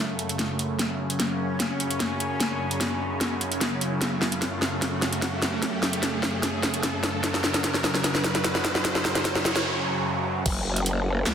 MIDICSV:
0, 0, Header, 1, 6, 480
1, 0, Start_track
1, 0, Key_signature, 3, "minor"
1, 0, Tempo, 402685
1, 945, Time_signature, 4, 2, 24, 8
1, 13521, End_track
2, 0, Start_track
2, 0, Title_t, "Supersaw synth"
2, 0, Program_c, 0, 81
2, 0, Note_on_c, 0, 42, 80
2, 0, Note_on_c, 0, 49, 74
2, 0, Note_on_c, 0, 57, 91
2, 932, Note_off_c, 0, 57, 0
2, 947, Note_on_c, 0, 61, 90
2, 4772, Note_off_c, 0, 61, 0
2, 4785, Note_on_c, 0, 57, 94
2, 8612, Note_off_c, 0, 57, 0
2, 8626, Note_on_c, 0, 54, 95
2, 12417, Note_off_c, 0, 42, 0
2, 12418, Note_off_c, 0, 49, 0
2, 12452, Note_off_c, 0, 54, 0
2, 12465, Note_on_c, 0, 54, 86
2, 12465, Note_on_c, 0, 61, 75
2, 12465, Note_on_c, 0, 69, 95
2, 13521, Note_off_c, 0, 54, 0
2, 13521, Note_off_c, 0, 61, 0
2, 13521, Note_off_c, 0, 69, 0
2, 13521, End_track
3, 0, Start_track
3, 0, Title_t, "Wobble bass"
3, 0, Program_c, 1, 39
3, 12465, Note_on_c, 1, 30, 103
3, 13407, Note_off_c, 1, 30, 0
3, 13425, Note_on_c, 1, 37, 93
3, 13521, Note_off_c, 1, 37, 0
3, 13521, End_track
4, 0, Start_track
4, 0, Title_t, "Noise sweep"
4, 0, Program_c, 2, 103
4, 10545, Note_on_c, 2, 60, 78
4, 12465, Note_off_c, 2, 60, 0
4, 13521, End_track
5, 0, Start_track
5, 0, Title_t, "Riser"
5, 0, Program_c, 3, 103
5, 0, Note_on_c, 3, 60, 79
5, 11505, Note_off_c, 3, 60, 0
5, 13521, End_track
6, 0, Start_track
6, 0, Title_t, "Drums"
6, 226, Note_on_c, 9, 42, 50
6, 345, Note_off_c, 9, 42, 0
6, 351, Note_on_c, 9, 42, 50
6, 466, Note_off_c, 9, 42, 0
6, 466, Note_on_c, 9, 38, 54
6, 466, Note_on_c, 9, 42, 74
6, 585, Note_off_c, 9, 38, 0
6, 585, Note_off_c, 9, 42, 0
6, 706, Note_on_c, 9, 42, 54
6, 825, Note_off_c, 9, 42, 0
6, 945, Note_on_c, 9, 38, 56
6, 945, Note_on_c, 9, 42, 75
6, 1065, Note_off_c, 9, 38, 0
6, 1065, Note_off_c, 9, 42, 0
6, 1311, Note_on_c, 9, 42, 51
6, 1426, Note_off_c, 9, 42, 0
6, 1426, Note_on_c, 9, 38, 59
6, 1426, Note_on_c, 9, 42, 75
6, 1545, Note_off_c, 9, 38, 0
6, 1545, Note_off_c, 9, 42, 0
6, 1905, Note_on_c, 9, 38, 61
6, 1905, Note_on_c, 9, 42, 76
6, 2025, Note_off_c, 9, 38, 0
6, 2025, Note_off_c, 9, 42, 0
6, 2146, Note_on_c, 9, 42, 48
6, 2265, Note_off_c, 9, 42, 0
6, 2271, Note_on_c, 9, 42, 49
6, 2386, Note_off_c, 9, 42, 0
6, 2386, Note_on_c, 9, 38, 64
6, 2386, Note_on_c, 9, 42, 76
6, 2505, Note_off_c, 9, 38, 0
6, 2505, Note_off_c, 9, 42, 0
6, 2626, Note_on_c, 9, 42, 50
6, 2745, Note_off_c, 9, 42, 0
6, 2866, Note_on_c, 9, 38, 63
6, 2866, Note_on_c, 9, 42, 71
6, 2985, Note_off_c, 9, 38, 0
6, 2985, Note_off_c, 9, 42, 0
6, 3230, Note_on_c, 9, 42, 49
6, 3345, Note_off_c, 9, 42, 0
6, 3345, Note_on_c, 9, 38, 66
6, 3345, Note_on_c, 9, 42, 74
6, 3464, Note_off_c, 9, 38, 0
6, 3464, Note_off_c, 9, 42, 0
6, 3825, Note_on_c, 9, 38, 72
6, 3825, Note_on_c, 9, 42, 77
6, 3944, Note_off_c, 9, 38, 0
6, 3944, Note_off_c, 9, 42, 0
6, 4065, Note_on_c, 9, 42, 48
6, 4184, Note_off_c, 9, 42, 0
6, 4191, Note_on_c, 9, 42, 48
6, 4305, Note_off_c, 9, 42, 0
6, 4305, Note_on_c, 9, 38, 71
6, 4305, Note_on_c, 9, 42, 73
6, 4425, Note_off_c, 9, 38, 0
6, 4425, Note_off_c, 9, 42, 0
6, 4545, Note_on_c, 9, 42, 49
6, 4665, Note_off_c, 9, 42, 0
6, 4785, Note_on_c, 9, 38, 72
6, 4785, Note_on_c, 9, 42, 75
6, 4904, Note_off_c, 9, 38, 0
6, 4904, Note_off_c, 9, 42, 0
6, 5025, Note_on_c, 9, 38, 76
6, 5144, Note_off_c, 9, 38, 0
6, 5151, Note_on_c, 9, 42, 51
6, 5266, Note_off_c, 9, 42, 0
6, 5266, Note_on_c, 9, 38, 74
6, 5266, Note_on_c, 9, 42, 73
6, 5385, Note_off_c, 9, 38, 0
6, 5385, Note_off_c, 9, 42, 0
6, 5505, Note_on_c, 9, 38, 76
6, 5624, Note_off_c, 9, 38, 0
6, 5745, Note_on_c, 9, 38, 78
6, 5745, Note_on_c, 9, 42, 76
6, 5864, Note_off_c, 9, 38, 0
6, 5864, Note_off_c, 9, 42, 0
6, 5985, Note_on_c, 9, 38, 75
6, 5985, Note_on_c, 9, 42, 49
6, 6104, Note_off_c, 9, 38, 0
6, 6104, Note_off_c, 9, 42, 0
6, 6110, Note_on_c, 9, 42, 49
6, 6225, Note_off_c, 9, 42, 0
6, 6225, Note_on_c, 9, 38, 82
6, 6225, Note_on_c, 9, 42, 77
6, 6344, Note_off_c, 9, 38, 0
6, 6344, Note_off_c, 9, 42, 0
6, 6465, Note_on_c, 9, 38, 80
6, 6465, Note_on_c, 9, 42, 49
6, 6584, Note_off_c, 9, 38, 0
6, 6584, Note_off_c, 9, 42, 0
6, 6705, Note_on_c, 9, 38, 80
6, 6705, Note_on_c, 9, 42, 78
6, 6824, Note_off_c, 9, 38, 0
6, 6824, Note_off_c, 9, 42, 0
6, 6945, Note_on_c, 9, 38, 85
6, 7064, Note_off_c, 9, 38, 0
6, 7070, Note_on_c, 9, 42, 55
6, 7185, Note_off_c, 9, 42, 0
6, 7185, Note_on_c, 9, 38, 82
6, 7185, Note_on_c, 9, 42, 77
6, 7304, Note_off_c, 9, 38, 0
6, 7304, Note_off_c, 9, 42, 0
6, 7425, Note_on_c, 9, 38, 88
6, 7544, Note_off_c, 9, 38, 0
6, 7665, Note_on_c, 9, 38, 88
6, 7665, Note_on_c, 9, 42, 81
6, 7784, Note_off_c, 9, 38, 0
6, 7784, Note_off_c, 9, 42, 0
6, 7906, Note_on_c, 9, 38, 85
6, 7906, Note_on_c, 9, 42, 51
6, 8025, Note_off_c, 9, 38, 0
6, 8025, Note_off_c, 9, 42, 0
6, 8031, Note_on_c, 9, 42, 53
6, 8145, Note_off_c, 9, 42, 0
6, 8145, Note_on_c, 9, 38, 88
6, 8145, Note_on_c, 9, 42, 80
6, 8264, Note_off_c, 9, 38, 0
6, 8264, Note_off_c, 9, 42, 0
6, 8386, Note_on_c, 9, 38, 93
6, 8386, Note_on_c, 9, 42, 55
6, 8505, Note_off_c, 9, 38, 0
6, 8505, Note_off_c, 9, 42, 0
6, 8626, Note_on_c, 9, 38, 89
6, 8626, Note_on_c, 9, 42, 79
6, 8745, Note_off_c, 9, 38, 0
6, 8745, Note_off_c, 9, 42, 0
6, 8751, Note_on_c, 9, 38, 80
6, 8865, Note_off_c, 9, 38, 0
6, 8865, Note_on_c, 9, 38, 94
6, 8985, Note_off_c, 9, 38, 0
6, 8990, Note_on_c, 9, 38, 88
6, 8990, Note_on_c, 9, 42, 55
6, 9105, Note_off_c, 9, 38, 0
6, 9105, Note_off_c, 9, 42, 0
6, 9105, Note_on_c, 9, 38, 91
6, 9105, Note_on_c, 9, 42, 81
6, 9225, Note_off_c, 9, 38, 0
6, 9225, Note_off_c, 9, 42, 0
6, 9230, Note_on_c, 9, 38, 84
6, 9346, Note_off_c, 9, 38, 0
6, 9346, Note_on_c, 9, 38, 100
6, 9465, Note_off_c, 9, 38, 0
6, 9470, Note_on_c, 9, 38, 81
6, 9586, Note_off_c, 9, 38, 0
6, 9586, Note_on_c, 9, 38, 98
6, 9586, Note_on_c, 9, 42, 82
6, 9705, Note_off_c, 9, 38, 0
6, 9705, Note_off_c, 9, 42, 0
6, 9711, Note_on_c, 9, 38, 88
6, 9826, Note_off_c, 9, 38, 0
6, 9826, Note_on_c, 9, 38, 94
6, 9826, Note_on_c, 9, 42, 53
6, 9945, Note_off_c, 9, 38, 0
6, 9945, Note_off_c, 9, 42, 0
6, 9951, Note_on_c, 9, 38, 87
6, 9951, Note_on_c, 9, 42, 54
6, 10065, Note_off_c, 9, 38, 0
6, 10065, Note_off_c, 9, 42, 0
6, 10065, Note_on_c, 9, 38, 97
6, 10065, Note_on_c, 9, 42, 81
6, 10185, Note_off_c, 9, 38, 0
6, 10185, Note_off_c, 9, 42, 0
6, 10191, Note_on_c, 9, 38, 92
6, 10306, Note_off_c, 9, 38, 0
6, 10306, Note_on_c, 9, 38, 105
6, 10306, Note_on_c, 9, 42, 55
6, 10425, Note_off_c, 9, 38, 0
6, 10425, Note_off_c, 9, 42, 0
6, 10431, Note_on_c, 9, 38, 94
6, 10546, Note_off_c, 9, 38, 0
6, 10546, Note_on_c, 9, 38, 101
6, 10546, Note_on_c, 9, 42, 83
6, 10665, Note_off_c, 9, 38, 0
6, 10665, Note_off_c, 9, 42, 0
6, 10671, Note_on_c, 9, 38, 92
6, 10786, Note_off_c, 9, 38, 0
6, 10786, Note_on_c, 9, 38, 102
6, 10905, Note_off_c, 9, 38, 0
6, 10911, Note_on_c, 9, 38, 96
6, 10911, Note_on_c, 9, 42, 60
6, 11025, Note_off_c, 9, 38, 0
6, 11025, Note_off_c, 9, 42, 0
6, 11025, Note_on_c, 9, 38, 107
6, 11025, Note_on_c, 9, 42, 86
6, 11145, Note_off_c, 9, 38, 0
6, 11145, Note_off_c, 9, 42, 0
6, 11150, Note_on_c, 9, 38, 98
6, 11265, Note_off_c, 9, 38, 0
6, 11265, Note_on_c, 9, 38, 111
6, 11384, Note_off_c, 9, 38, 0
6, 11391, Note_on_c, 9, 38, 93
6, 11510, Note_off_c, 9, 38, 0
6, 12465, Note_on_c, 9, 36, 126
6, 12465, Note_on_c, 9, 42, 81
6, 12465, Note_on_c, 9, 49, 107
6, 12584, Note_off_c, 9, 42, 0
6, 12584, Note_off_c, 9, 49, 0
6, 12585, Note_off_c, 9, 36, 0
6, 12831, Note_on_c, 9, 42, 58
6, 12945, Note_off_c, 9, 42, 0
6, 12945, Note_on_c, 9, 42, 84
6, 13065, Note_off_c, 9, 42, 0
6, 13425, Note_on_c, 9, 38, 122
6, 13425, Note_on_c, 9, 39, 96
6, 13425, Note_on_c, 9, 42, 86
6, 13521, Note_off_c, 9, 38, 0
6, 13521, Note_off_c, 9, 39, 0
6, 13521, Note_off_c, 9, 42, 0
6, 13521, End_track
0, 0, End_of_file